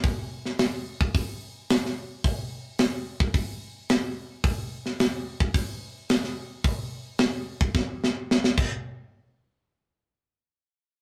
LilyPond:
\new DrumStaff \with { instrumentName = "Drums" } \drummode { \time 4/4 \tempo 4 = 109 <hho bd>8. sn16 <hho sn>8. bd16 <hho bd>4 <hho sn>16 sn8. | <hho bd>4 <hho sn>8. bd16 <hho bd>4 <hho sn>4 | <hho bd>8. sn16 <hho sn>8. bd16 <hho bd>4 <hho sn>16 sn8. | <hho bd>4 <hho sn>8. bd16 <bd sn>8 sn8 sn16 sn16 <cymc bd>8 |
r4 r4 r4 r4 | }